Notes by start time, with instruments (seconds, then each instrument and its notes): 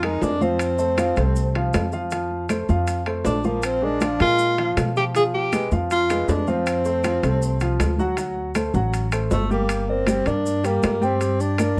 Already playing: upright bass F2
0.02 grand piano G#3 G#4 A#4, tenor saxophone D#4, high conga, high timbale, claves
0.22 upright bass F2, tenor saxophone D4, high conga, low timbale, maracas
0.41 grand piano F3 F4 F5, tenor saxophone C4, high conga, maracas
0.59 high conga, high timbale, claves, maracas
0.78 grand piano A3 A4 C5, high conga, maracas
0.97 grand piano F3 F4 F5, high conga, high timbale, low timbale, claves, maracas
1.16 upright bass C2, grand piano A3 A4 C5, high conga, high timbale, maracas
1.36 high conga, maracas
1.55 grand piano F3 F4 F5, high conga, high timbale
1.74 upright bass F2, high conga, high timbale, low timbale, claves, maracas
1.92 grand piano F3 F4 F5, maracas
2.11 grand piano F3 F4 F5, high conga, high timbale, maracas
2.31 high conga
2.49 grand piano A3 A4 C5, high conga, high timbale, low timbale, claves, maracas
2.69 upright bass F2, grand piano F3 F4 F5, high conga, maracas
2.87 high conga, high timbale, maracas
3.06 grand piano A3 A4 C5, high conga, high timbale, claves
3.25 upright bass A#1, tenor saxophone D4, high conga, low timbale, maracas
3.44 grand piano F3 F4 F5, tenor saxophone A#3, high conga, maracas
3.63 tenor saxophone C4, high conga, high timbale, claves, maracas
3.82 grand piano G#3 G#4 A#4, tenor saxophone D4, high conga
4.01 grand piano F3 F4 F5, high conga, high timbale, low timbale, claves, maracas
4.20 upright bass A#2, grand piano G#3 G#4 A#4, tenor saxophone F4, high conga, high timbale, maracas
4.39 high conga, maracas
4.58 grand piano F3 F4 F5, high conga, high timbale
4.77 upright bass B2, high conga, high timbale, low timbale, claves, maracas
4.96 grand piano F3 F4 F5, tenor saxophone G4, maracas
5.15 grand piano F3 F4 F5, tenor saxophone G#4, high conga, high timbale, maracas
5.34 tenor saxophone G4, high conga
5.52 grand piano G#3 G#4 B4, high conga, high timbale, low timbale, claves, maracas
5.71 upright bass F2, grand piano F3 F4 F5, high conga, maracas
5.91 tenor saxophone F4, high conga, high timbale, maracas
6.10 grand piano G#3 G#4 B4, high conga, high timbale, claves, maracas
6.28 upright bass F2, tenor saxophone D4, high conga, low timbale, maracas
6.47 grand piano F3 F4 F5, tenor saxophone C4, high conga, maracas
6.67 high conga, high timbale, claves, maracas
6.85 grand piano A3 A4 C5, high conga, maracas
7.04 grand piano F3 F4 F5, high conga, high timbale, low timbale, claves, maracas
7.23 upright bass C2, grand piano A3 A4 C5, high timbale, maracas
7.42 high conga, maracas
7.60 grand piano F3 F4 F5, high conga, high timbale, maracas
7.79 upright bass D2, high conga, high timbale, low timbale, claves, maracas
7.98 grand piano F#3 F#4 F#5, high conga, maracas
8.17 grand piano F#3 F#4 F#5, high conga, high timbale, maracas
8.37 high conga
8.55 grand piano A3 A4 C5, high conga, high timbale, low timbale, claves, maracas
8.74 upright bass A1, grand piano F#3 F#4 F#5, high conga, maracas
8.94 high conga, high timbale, maracas
9.12 grand piano A3 A4 C5, high conga, high timbale, claves, maracas
9.31 upright bass G1, tenor saxophone A3, high conga, low timbale, maracas
9.50 grand piano G3 G4 G5, tenor saxophone A#3, high conga, maracas
9.69 high timbale, claves, maracas
9.88 grand piano A#3 A#4 D5, tenor saxophone C4, high conga
10.07 grand piano G3 G4 G5, high conga, high timbale, low timbale, claves, maracas
10.26 upright bass G2, grand piano A#3 A#4 D5, tenor saxophone D4, high conga, high timbale, maracas
10.45 high conga, maracas
10.64 grand piano G3 G4 G5, tenor saxophone A#3, high conga, high timbale, maracas
10.83 upright bass G2, high conga, high timbale, low timbale, claves, maracas
11.01 grand piano G3 G4 G5, tenor saxophone C4, high conga, maracas
11.20 grand piano G3 G4 G5, high conga, high timbale, maracas
11.40 tenor saxophone D4, high conga, maracas
11.58 grand piano A#3 A#4 D5, high conga, high timbale, low timbale, claves, maracas